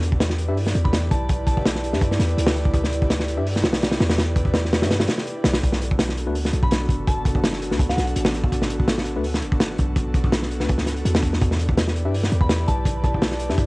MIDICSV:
0, 0, Header, 1, 5, 480
1, 0, Start_track
1, 0, Tempo, 361446
1, 1716, Time_signature, 4, 2, 24, 8
1, 18142, End_track
2, 0, Start_track
2, 0, Title_t, "Synth bell"
2, 0, Program_c, 0, 98
2, 1121, Note_on_c, 0, 83, 89
2, 1407, Note_off_c, 0, 83, 0
2, 1474, Note_on_c, 0, 81, 93
2, 1765, Note_off_c, 0, 81, 0
2, 1950, Note_on_c, 0, 81, 86
2, 2627, Note_off_c, 0, 81, 0
2, 8806, Note_on_c, 0, 83, 90
2, 9089, Note_off_c, 0, 83, 0
2, 9395, Note_on_c, 0, 81, 94
2, 9686, Note_off_c, 0, 81, 0
2, 10482, Note_on_c, 0, 78, 87
2, 10835, Note_off_c, 0, 78, 0
2, 16482, Note_on_c, 0, 83, 89
2, 16767, Note_off_c, 0, 83, 0
2, 16833, Note_on_c, 0, 81, 98
2, 17125, Note_off_c, 0, 81, 0
2, 17316, Note_on_c, 0, 81, 93
2, 17991, Note_off_c, 0, 81, 0
2, 18142, End_track
3, 0, Start_track
3, 0, Title_t, "Tine electric piano"
3, 0, Program_c, 1, 4
3, 643, Note_on_c, 1, 76, 97
3, 644, Note_on_c, 1, 62, 92
3, 644, Note_on_c, 1, 71, 84
3, 645, Note_on_c, 1, 67, 81
3, 758, Note_off_c, 1, 62, 0
3, 758, Note_off_c, 1, 71, 0
3, 758, Note_off_c, 1, 76, 0
3, 759, Note_off_c, 1, 67, 0
3, 2563, Note_on_c, 1, 62, 77
3, 2563, Note_on_c, 1, 71, 73
3, 2564, Note_on_c, 1, 67, 77
3, 2564, Note_on_c, 1, 76, 86
3, 2678, Note_off_c, 1, 62, 0
3, 2678, Note_off_c, 1, 67, 0
3, 2678, Note_off_c, 1, 71, 0
3, 2678, Note_off_c, 1, 76, 0
3, 4481, Note_on_c, 1, 62, 84
3, 4481, Note_on_c, 1, 71, 77
3, 4481, Note_on_c, 1, 76, 100
3, 4482, Note_on_c, 1, 67, 82
3, 4597, Note_off_c, 1, 62, 0
3, 4597, Note_off_c, 1, 67, 0
3, 4597, Note_off_c, 1, 71, 0
3, 4597, Note_off_c, 1, 76, 0
3, 6401, Note_on_c, 1, 71, 73
3, 6402, Note_on_c, 1, 62, 80
3, 6402, Note_on_c, 1, 67, 74
3, 6402, Note_on_c, 1, 76, 89
3, 6517, Note_off_c, 1, 62, 0
3, 6517, Note_off_c, 1, 67, 0
3, 6517, Note_off_c, 1, 71, 0
3, 6517, Note_off_c, 1, 76, 0
3, 8323, Note_on_c, 1, 57, 89
3, 8324, Note_on_c, 1, 62, 82
3, 8324, Note_on_c, 1, 66, 79
3, 8324, Note_on_c, 1, 71, 96
3, 8438, Note_off_c, 1, 57, 0
3, 8438, Note_off_c, 1, 62, 0
3, 8438, Note_off_c, 1, 66, 0
3, 8438, Note_off_c, 1, 71, 0
3, 10247, Note_on_c, 1, 57, 81
3, 10247, Note_on_c, 1, 62, 76
3, 10247, Note_on_c, 1, 66, 76
3, 10247, Note_on_c, 1, 71, 89
3, 10359, Note_off_c, 1, 57, 0
3, 10359, Note_off_c, 1, 66, 0
3, 10360, Note_off_c, 1, 62, 0
3, 10360, Note_off_c, 1, 71, 0
3, 12166, Note_on_c, 1, 62, 81
3, 12166, Note_on_c, 1, 66, 79
3, 12166, Note_on_c, 1, 71, 98
3, 12167, Note_on_c, 1, 57, 94
3, 12279, Note_off_c, 1, 57, 0
3, 12279, Note_off_c, 1, 62, 0
3, 12279, Note_off_c, 1, 66, 0
3, 12279, Note_off_c, 1, 71, 0
3, 14084, Note_on_c, 1, 71, 89
3, 14085, Note_on_c, 1, 57, 79
3, 14085, Note_on_c, 1, 62, 70
3, 14085, Note_on_c, 1, 66, 75
3, 14198, Note_off_c, 1, 57, 0
3, 14198, Note_off_c, 1, 71, 0
3, 14199, Note_off_c, 1, 62, 0
3, 14199, Note_off_c, 1, 66, 0
3, 16004, Note_on_c, 1, 62, 93
3, 16004, Note_on_c, 1, 71, 80
3, 16005, Note_on_c, 1, 67, 78
3, 16005, Note_on_c, 1, 76, 92
3, 16118, Note_off_c, 1, 62, 0
3, 16118, Note_off_c, 1, 67, 0
3, 16118, Note_off_c, 1, 71, 0
3, 16118, Note_off_c, 1, 76, 0
3, 17924, Note_on_c, 1, 67, 77
3, 17924, Note_on_c, 1, 71, 74
3, 17924, Note_on_c, 1, 76, 91
3, 17925, Note_on_c, 1, 62, 82
3, 18038, Note_off_c, 1, 62, 0
3, 18038, Note_off_c, 1, 67, 0
3, 18038, Note_off_c, 1, 71, 0
3, 18038, Note_off_c, 1, 76, 0
3, 18142, End_track
4, 0, Start_track
4, 0, Title_t, "808-style bass"
4, 0, Program_c, 2, 38
4, 0, Note_on_c, 2, 40, 103
4, 643, Note_on_c, 2, 43, 111
4, 663, Note_off_c, 2, 40, 0
4, 978, Note_off_c, 2, 43, 0
4, 995, Note_on_c, 2, 40, 109
4, 1457, Note_off_c, 2, 40, 0
4, 1477, Note_on_c, 2, 35, 80
4, 2561, Note_on_c, 2, 43, 105
4, 2581, Note_off_c, 2, 35, 0
4, 2897, Note_off_c, 2, 43, 0
4, 2913, Note_on_c, 2, 40, 97
4, 3132, Note_off_c, 2, 40, 0
4, 3154, Note_on_c, 2, 38, 89
4, 4480, Note_on_c, 2, 43, 109
4, 4500, Note_off_c, 2, 38, 0
4, 4835, Note_on_c, 2, 35, 84
4, 4855, Note_off_c, 2, 43, 0
4, 5297, Note_off_c, 2, 35, 0
4, 5316, Note_on_c, 2, 40, 94
4, 6406, Note_on_c, 2, 43, 107
4, 6426, Note_off_c, 2, 40, 0
4, 6739, Note_off_c, 2, 43, 0
4, 7234, Note_on_c, 2, 35, 92
4, 7452, Note_off_c, 2, 35, 0
4, 7481, Note_on_c, 2, 35, 101
4, 8322, Note_on_c, 2, 38, 107
4, 8342, Note_off_c, 2, 35, 0
4, 8657, Note_off_c, 2, 38, 0
4, 8674, Note_on_c, 2, 35, 104
4, 9137, Note_off_c, 2, 35, 0
4, 9146, Note_on_c, 2, 30, 89
4, 10244, Note_on_c, 2, 38, 104
4, 10264, Note_off_c, 2, 30, 0
4, 10578, Note_off_c, 2, 38, 0
4, 10595, Note_on_c, 2, 35, 98
4, 10813, Note_off_c, 2, 35, 0
4, 10839, Note_on_c, 2, 33, 84
4, 12163, Note_on_c, 2, 38, 105
4, 12183, Note_off_c, 2, 33, 0
4, 12516, Note_on_c, 2, 30, 86
4, 12536, Note_off_c, 2, 38, 0
4, 12977, Note_off_c, 2, 30, 0
4, 13001, Note_on_c, 2, 35, 94
4, 14083, Note_on_c, 2, 38, 107
4, 14103, Note_off_c, 2, 35, 0
4, 14438, Note_on_c, 2, 37, 102
4, 14458, Note_off_c, 2, 38, 0
4, 14654, Note_off_c, 2, 37, 0
4, 14676, Note_on_c, 2, 40, 109
4, 15138, Note_off_c, 2, 40, 0
4, 15158, Note_on_c, 2, 40, 96
4, 16007, Note_on_c, 2, 43, 107
4, 16027, Note_off_c, 2, 40, 0
4, 16340, Note_off_c, 2, 43, 0
4, 16360, Note_on_c, 2, 40, 103
4, 16820, Note_off_c, 2, 40, 0
4, 16842, Note_on_c, 2, 35, 86
4, 17925, Note_on_c, 2, 43, 104
4, 17945, Note_off_c, 2, 35, 0
4, 18142, Note_off_c, 2, 43, 0
4, 18142, End_track
5, 0, Start_track
5, 0, Title_t, "Drums"
5, 33, Note_on_c, 9, 42, 78
5, 162, Note_on_c, 9, 36, 86
5, 166, Note_off_c, 9, 42, 0
5, 270, Note_on_c, 9, 38, 110
5, 274, Note_on_c, 9, 42, 92
5, 295, Note_off_c, 9, 36, 0
5, 396, Note_off_c, 9, 38, 0
5, 396, Note_on_c, 9, 38, 62
5, 407, Note_off_c, 9, 42, 0
5, 510, Note_on_c, 9, 42, 68
5, 529, Note_off_c, 9, 38, 0
5, 642, Note_off_c, 9, 42, 0
5, 759, Note_on_c, 9, 46, 73
5, 884, Note_on_c, 9, 38, 46
5, 892, Note_off_c, 9, 46, 0
5, 997, Note_on_c, 9, 42, 60
5, 1016, Note_off_c, 9, 38, 0
5, 1130, Note_off_c, 9, 42, 0
5, 1130, Note_on_c, 9, 36, 95
5, 1235, Note_on_c, 9, 38, 99
5, 1238, Note_on_c, 9, 42, 88
5, 1263, Note_off_c, 9, 36, 0
5, 1368, Note_off_c, 9, 38, 0
5, 1371, Note_off_c, 9, 42, 0
5, 1476, Note_on_c, 9, 42, 61
5, 1477, Note_on_c, 9, 36, 93
5, 1609, Note_off_c, 9, 42, 0
5, 1610, Note_off_c, 9, 36, 0
5, 1713, Note_on_c, 9, 42, 82
5, 1719, Note_on_c, 9, 36, 112
5, 1846, Note_off_c, 9, 42, 0
5, 1851, Note_off_c, 9, 36, 0
5, 1949, Note_on_c, 9, 36, 99
5, 1957, Note_on_c, 9, 42, 67
5, 2082, Note_off_c, 9, 36, 0
5, 2087, Note_on_c, 9, 36, 93
5, 2090, Note_off_c, 9, 42, 0
5, 2197, Note_on_c, 9, 38, 116
5, 2204, Note_on_c, 9, 42, 95
5, 2220, Note_off_c, 9, 36, 0
5, 2326, Note_off_c, 9, 38, 0
5, 2326, Note_on_c, 9, 38, 55
5, 2337, Note_off_c, 9, 42, 0
5, 2440, Note_on_c, 9, 42, 62
5, 2458, Note_off_c, 9, 38, 0
5, 2564, Note_on_c, 9, 38, 40
5, 2573, Note_off_c, 9, 42, 0
5, 2673, Note_on_c, 9, 36, 96
5, 2676, Note_on_c, 9, 42, 79
5, 2697, Note_off_c, 9, 38, 0
5, 2805, Note_on_c, 9, 38, 48
5, 2806, Note_off_c, 9, 36, 0
5, 2809, Note_off_c, 9, 42, 0
5, 2916, Note_on_c, 9, 42, 69
5, 2917, Note_off_c, 9, 38, 0
5, 2917, Note_on_c, 9, 38, 43
5, 3033, Note_off_c, 9, 42, 0
5, 3033, Note_on_c, 9, 42, 44
5, 3049, Note_off_c, 9, 38, 0
5, 3162, Note_off_c, 9, 42, 0
5, 3162, Note_on_c, 9, 42, 88
5, 3274, Note_on_c, 9, 38, 127
5, 3295, Note_off_c, 9, 42, 0
5, 3394, Note_on_c, 9, 42, 65
5, 3400, Note_off_c, 9, 38, 0
5, 3400, Note_on_c, 9, 38, 33
5, 3523, Note_on_c, 9, 36, 101
5, 3527, Note_off_c, 9, 42, 0
5, 3532, Note_off_c, 9, 38, 0
5, 3633, Note_off_c, 9, 36, 0
5, 3633, Note_on_c, 9, 36, 113
5, 3633, Note_on_c, 9, 42, 85
5, 3766, Note_off_c, 9, 36, 0
5, 3766, Note_off_c, 9, 42, 0
5, 3770, Note_on_c, 9, 38, 53
5, 3883, Note_on_c, 9, 42, 69
5, 3903, Note_off_c, 9, 38, 0
5, 4010, Note_on_c, 9, 36, 95
5, 4016, Note_off_c, 9, 42, 0
5, 4119, Note_on_c, 9, 38, 99
5, 4122, Note_on_c, 9, 42, 96
5, 4143, Note_off_c, 9, 36, 0
5, 4245, Note_off_c, 9, 38, 0
5, 4245, Note_on_c, 9, 38, 58
5, 4255, Note_off_c, 9, 42, 0
5, 4358, Note_on_c, 9, 42, 69
5, 4378, Note_off_c, 9, 38, 0
5, 4491, Note_off_c, 9, 42, 0
5, 4602, Note_on_c, 9, 46, 72
5, 4729, Note_on_c, 9, 38, 46
5, 4735, Note_off_c, 9, 46, 0
5, 4831, Note_off_c, 9, 38, 0
5, 4831, Note_on_c, 9, 38, 100
5, 4835, Note_on_c, 9, 42, 74
5, 4952, Note_off_c, 9, 38, 0
5, 4952, Note_on_c, 9, 38, 101
5, 4965, Note_off_c, 9, 42, 0
5, 4965, Note_on_c, 9, 42, 77
5, 5075, Note_off_c, 9, 42, 0
5, 5075, Note_on_c, 9, 42, 75
5, 5085, Note_off_c, 9, 38, 0
5, 5088, Note_on_c, 9, 38, 98
5, 5199, Note_off_c, 9, 38, 0
5, 5199, Note_on_c, 9, 38, 96
5, 5208, Note_off_c, 9, 42, 0
5, 5209, Note_on_c, 9, 42, 74
5, 5310, Note_off_c, 9, 42, 0
5, 5310, Note_on_c, 9, 42, 75
5, 5320, Note_off_c, 9, 38, 0
5, 5320, Note_on_c, 9, 38, 108
5, 5439, Note_off_c, 9, 38, 0
5, 5439, Note_on_c, 9, 38, 115
5, 5441, Note_off_c, 9, 42, 0
5, 5441, Note_on_c, 9, 42, 75
5, 5556, Note_off_c, 9, 38, 0
5, 5556, Note_on_c, 9, 38, 104
5, 5560, Note_off_c, 9, 42, 0
5, 5560, Note_on_c, 9, 42, 69
5, 5689, Note_off_c, 9, 38, 0
5, 5693, Note_off_c, 9, 42, 0
5, 5789, Note_on_c, 9, 36, 104
5, 5796, Note_on_c, 9, 42, 67
5, 5910, Note_off_c, 9, 36, 0
5, 5910, Note_on_c, 9, 36, 95
5, 5928, Note_off_c, 9, 42, 0
5, 6024, Note_on_c, 9, 38, 115
5, 6034, Note_on_c, 9, 42, 85
5, 6043, Note_off_c, 9, 36, 0
5, 6157, Note_off_c, 9, 38, 0
5, 6167, Note_off_c, 9, 42, 0
5, 6174, Note_on_c, 9, 38, 50
5, 6276, Note_on_c, 9, 42, 75
5, 6280, Note_off_c, 9, 38, 0
5, 6280, Note_on_c, 9, 38, 109
5, 6402, Note_off_c, 9, 38, 0
5, 6402, Note_on_c, 9, 38, 96
5, 6409, Note_off_c, 9, 42, 0
5, 6411, Note_on_c, 9, 42, 82
5, 6515, Note_off_c, 9, 42, 0
5, 6515, Note_on_c, 9, 42, 74
5, 6516, Note_off_c, 9, 38, 0
5, 6516, Note_on_c, 9, 38, 102
5, 6638, Note_off_c, 9, 38, 0
5, 6638, Note_on_c, 9, 38, 101
5, 6641, Note_off_c, 9, 42, 0
5, 6641, Note_on_c, 9, 42, 73
5, 6737, Note_off_c, 9, 42, 0
5, 6737, Note_on_c, 9, 42, 82
5, 6753, Note_off_c, 9, 38, 0
5, 6753, Note_on_c, 9, 38, 97
5, 6869, Note_off_c, 9, 42, 0
5, 6878, Note_off_c, 9, 38, 0
5, 6878, Note_on_c, 9, 38, 51
5, 6997, Note_on_c, 9, 42, 55
5, 7011, Note_off_c, 9, 38, 0
5, 7129, Note_off_c, 9, 42, 0
5, 7225, Note_on_c, 9, 38, 106
5, 7238, Note_on_c, 9, 42, 75
5, 7351, Note_off_c, 9, 38, 0
5, 7351, Note_on_c, 9, 38, 102
5, 7359, Note_off_c, 9, 42, 0
5, 7359, Note_on_c, 9, 42, 76
5, 7480, Note_off_c, 9, 42, 0
5, 7480, Note_on_c, 9, 42, 80
5, 7482, Note_on_c, 9, 36, 103
5, 7484, Note_off_c, 9, 38, 0
5, 7603, Note_on_c, 9, 38, 61
5, 7613, Note_off_c, 9, 42, 0
5, 7615, Note_off_c, 9, 36, 0
5, 7723, Note_on_c, 9, 42, 69
5, 7736, Note_off_c, 9, 38, 0
5, 7851, Note_on_c, 9, 36, 91
5, 7856, Note_off_c, 9, 42, 0
5, 7953, Note_on_c, 9, 38, 120
5, 7956, Note_on_c, 9, 42, 98
5, 7984, Note_off_c, 9, 36, 0
5, 8086, Note_off_c, 9, 38, 0
5, 8086, Note_on_c, 9, 38, 60
5, 8089, Note_off_c, 9, 42, 0
5, 8197, Note_on_c, 9, 42, 70
5, 8219, Note_off_c, 9, 38, 0
5, 8330, Note_off_c, 9, 42, 0
5, 8433, Note_on_c, 9, 46, 67
5, 8565, Note_off_c, 9, 46, 0
5, 8565, Note_on_c, 9, 38, 44
5, 8671, Note_on_c, 9, 42, 66
5, 8698, Note_off_c, 9, 38, 0
5, 8799, Note_on_c, 9, 36, 94
5, 8804, Note_off_c, 9, 42, 0
5, 8908, Note_on_c, 9, 42, 84
5, 8924, Note_on_c, 9, 38, 111
5, 8932, Note_off_c, 9, 36, 0
5, 9041, Note_off_c, 9, 42, 0
5, 9056, Note_off_c, 9, 38, 0
5, 9147, Note_on_c, 9, 36, 97
5, 9165, Note_on_c, 9, 42, 62
5, 9280, Note_off_c, 9, 36, 0
5, 9297, Note_off_c, 9, 42, 0
5, 9394, Note_on_c, 9, 36, 112
5, 9398, Note_on_c, 9, 42, 82
5, 9526, Note_off_c, 9, 36, 0
5, 9531, Note_off_c, 9, 42, 0
5, 9632, Note_on_c, 9, 36, 104
5, 9634, Note_on_c, 9, 42, 79
5, 9761, Note_off_c, 9, 36, 0
5, 9761, Note_on_c, 9, 36, 96
5, 9767, Note_off_c, 9, 42, 0
5, 9877, Note_on_c, 9, 38, 111
5, 9879, Note_on_c, 9, 42, 96
5, 9893, Note_off_c, 9, 36, 0
5, 9997, Note_off_c, 9, 38, 0
5, 9997, Note_on_c, 9, 38, 52
5, 10012, Note_off_c, 9, 42, 0
5, 10117, Note_on_c, 9, 42, 64
5, 10130, Note_off_c, 9, 38, 0
5, 10244, Note_on_c, 9, 38, 41
5, 10250, Note_off_c, 9, 42, 0
5, 10350, Note_on_c, 9, 36, 110
5, 10357, Note_on_c, 9, 42, 85
5, 10376, Note_off_c, 9, 38, 0
5, 10482, Note_off_c, 9, 36, 0
5, 10484, Note_on_c, 9, 38, 49
5, 10489, Note_off_c, 9, 42, 0
5, 10598, Note_on_c, 9, 42, 63
5, 10601, Note_off_c, 9, 38, 0
5, 10601, Note_on_c, 9, 38, 41
5, 10721, Note_off_c, 9, 42, 0
5, 10721, Note_on_c, 9, 42, 49
5, 10734, Note_off_c, 9, 38, 0
5, 10834, Note_off_c, 9, 42, 0
5, 10834, Note_on_c, 9, 42, 80
5, 10954, Note_on_c, 9, 38, 113
5, 10967, Note_off_c, 9, 42, 0
5, 11070, Note_off_c, 9, 38, 0
5, 11070, Note_on_c, 9, 38, 38
5, 11077, Note_on_c, 9, 42, 65
5, 11203, Note_off_c, 9, 38, 0
5, 11204, Note_on_c, 9, 36, 109
5, 11210, Note_off_c, 9, 42, 0
5, 11317, Note_off_c, 9, 36, 0
5, 11317, Note_on_c, 9, 36, 93
5, 11317, Note_on_c, 9, 42, 83
5, 11443, Note_on_c, 9, 38, 60
5, 11449, Note_off_c, 9, 42, 0
5, 11450, Note_off_c, 9, 36, 0
5, 11554, Note_on_c, 9, 42, 66
5, 11576, Note_off_c, 9, 38, 0
5, 11681, Note_on_c, 9, 36, 96
5, 11687, Note_off_c, 9, 42, 0
5, 11788, Note_on_c, 9, 38, 117
5, 11793, Note_on_c, 9, 42, 80
5, 11814, Note_off_c, 9, 36, 0
5, 11921, Note_off_c, 9, 38, 0
5, 11923, Note_on_c, 9, 38, 62
5, 11926, Note_off_c, 9, 42, 0
5, 12019, Note_on_c, 9, 42, 62
5, 12056, Note_off_c, 9, 38, 0
5, 12152, Note_off_c, 9, 42, 0
5, 12268, Note_on_c, 9, 46, 65
5, 12401, Note_off_c, 9, 46, 0
5, 12406, Note_on_c, 9, 38, 44
5, 12513, Note_on_c, 9, 42, 63
5, 12539, Note_off_c, 9, 38, 0
5, 12641, Note_on_c, 9, 36, 86
5, 12646, Note_off_c, 9, 42, 0
5, 12751, Note_on_c, 9, 38, 112
5, 12751, Note_on_c, 9, 42, 94
5, 12774, Note_off_c, 9, 36, 0
5, 12884, Note_off_c, 9, 38, 0
5, 12884, Note_off_c, 9, 42, 0
5, 12991, Note_on_c, 9, 42, 61
5, 13001, Note_on_c, 9, 36, 88
5, 13124, Note_off_c, 9, 42, 0
5, 13134, Note_off_c, 9, 36, 0
5, 13227, Note_on_c, 9, 36, 99
5, 13227, Note_on_c, 9, 42, 82
5, 13360, Note_off_c, 9, 36, 0
5, 13360, Note_off_c, 9, 42, 0
5, 13468, Note_on_c, 9, 36, 106
5, 13473, Note_on_c, 9, 42, 69
5, 13598, Note_off_c, 9, 36, 0
5, 13598, Note_on_c, 9, 36, 99
5, 13605, Note_off_c, 9, 42, 0
5, 13709, Note_on_c, 9, 38, 111
5, 13714, Note_on_c, 9, 42, 93
5, 13731, Note_off_c, 9, 36, 0
5, 13842, Note_off_c, 9, 38, 0
5, 13844, Note_on_c, 9, 38, 51
5, 13847, Note_off_c, 9, 42, 0
5, 13957, Note_on_c, 9, 42, 64
5, 13977, Note_off_c, 9, 38, 0
5, 14077, Note_on_c, 9, 38, 39
5, 14089, Note_off_c, 9, 42, 0
5, 14192, Note_on_c, 9, 42, 76
5, 14201, Note_on_c, 9, 36, 95
5, 14210, Note_off_c, 9, 38, 0
5, 14314, Note_on_c, 9, 38, 54
5, 14324, Note_off_c, 9, 42, 0
5, 14334, Note_off_c, 9, 36, 0
5, 14425, Note_off_c, 9, 38, 0
5, 14425, Note_on_c, 9, 38, 40
5, 14430, Note_on_c, 9, 42, 65
5, 14558, Note_off_c, 9, 38, 0
5, 14560, Note_off_c, 9, 42, 0
5, 14560, Note_on_c, 9, 42, 46
5, 14677, Note_off_c, 9, 42, 0
5, 14677, Note_on_c, 9, 42, 77
5, 14803, Note_on_c, 9, 38, 119
5, 14810, Note_off_c, 9, 42, 0
5, 14909, Note_on_c, 9, 36, 100
5, 14912, Note_on_c, 9, 42, 76
5, 14936, Note_off_c, 9, 38, 0
5, 15042, Note_off_c, 9, 36, 0
5, 15045, Note_off_c, 9, 42, 0
5, 15047, Note_on_c, 9, 38, 52
5, 15156, Note_on_c, 9, 42, 80
5, 15159, Note_on_c, 9, 36, 106
5, 15179, Note_off_c, 9, 38, 0
5, 15286, Note_on_c, 9, 38, 54
5, 15289, Note_off_c, 9, 42, 0
5, 15292, Note_off_c, 9, 36, 0
5, 15392, Note_on_c, 9, 42, 75
5, 15419, Note_off_c, 9, 38, 0
5, 15521, Note_on_c, 9, 36, 91
5, 15525, Note_off_c, 9, 42, 0
5, 15636, Note_on_c, 9, 38, 120
5, 15639, Note_on_c, 9, 42, 89
5, 15654, Note_off_c, 9, 36, 0
5, 15769, Note_off_c, 9, 38, 0
5, 15770, Note_on_c, 9, 38, 66
5, 15772, Note_off_c, 9, 42, 0
5, 15880, Note_on_c, 9, 42, 64
5, 15903, Note_off_c, 9, 38, 0
5, 16012, Note_off_c, 9, 42, 0
5, 16123, Note_on_c, 9, 46, 70
5, 16247, Note_on_c, 9, 38, 47
5, 16256, Note_off_c, 9, 46, 0
5, 16357, Note_on_c, 9, 42, 68
5, 16380, Note_off_c, 9, 38, 0
5, 16476, Note_on_c, 9, 36, 96
5, 16490, Note_off_c, 9, 42, 0
5, 16590, Note_on_c, 9, 38, 105
5, 16591, Note_on_c, 9, 42, 82
5, 16608, Note_off_c, 9, 36, 0
5, 16723, Note_off_c, 9, 38, 0
5, 16724, Note_off_c, 9, 42, 0
5, 16833, Note_on_c, 9, 42, 67
5, 16842, Note_on_c, 9, 36, 88
5, 16966, Note_off_c, 9, 42, 0
5, 16974, Note_off_c, 9, 36, 0
5, 17068, Note_on_c, 9, 36, 107
5, 17073, Note_on_c, 9, 42, 90
5, 17201, Note_off_c, 9, 36, 0
5, 17205, Note_off_c, 9, 42, 0
5, 17313, Note_on_c, 9, 36, 106
5, 17317, Note_on_c, 9, 42, 70
5, 17445, Note_off_c, 9, 36, 0
5, 17450, Note_off_c, 9, 42, 0
5, 17454, Note_on_c, 9, 36, 87
5, 17551, Note_on_c, 9, 42, 86
5, 17554, Note_on_c, 9, 38, 127
5, 17587, Note_off_c, 9, 36, 0
5, 17681, Note_off_c, 9, 38, 0
5, 17681, Note_on_c, 9, 38, 55
5, 17684, Note_off_c, 9, 42, 0
5, 17787, Note_on_c, 9, 42, 67
5, 17814, Note_off_c, 9, 38, 0
5, 17920, Note_off_c, 9, 42, 0
5, 17921, Note_on_c, 9, 38, 36
5, 18030, Note_on_c, 9, 42, 79
5, 18033, Note_on_c, 9, 36, 101
5, 18053, Note_off_c, 9, 38, 0
5, 18142, Note_off_c, 9, 36, 0
5, 18142, Note_off_c, 9, 42, 0
5, 18142, End_track
0, 0, End_of_file